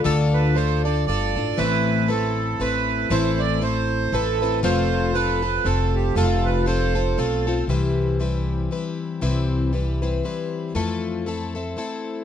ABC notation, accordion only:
X:1
M:3/4
L:1/8
Q:"Swing" 1/4=118
K:C
V:1 name="Accordion"
A B c d d2 | B2 A2 B2 | c d c2 A2 | c2 B2 A G |
A B c2 A2 | z6 | z6 | z6 |]